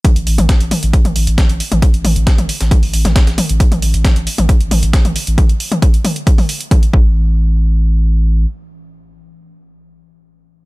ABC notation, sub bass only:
X:1
M:4/4
L:1/16
Q:1/4=135
K:C
V:1 name="Sub bass" clef=bass
z A,,, A,,, A,,, z A,,, z A,,, z A,,, A,,, A,,, z A,,, z A,,, | z A,,, A,,, A,,, z A,,, z A,,, z A,,, A,,, A,,, z A,,, z A,,, | z A,,, A,,, A,,, z A,,, z A,,, z A,,, A,,, A,,, z A,,, z A,,, | z12 z2 A,,,2- |
A,,,12 z4 | z16 |]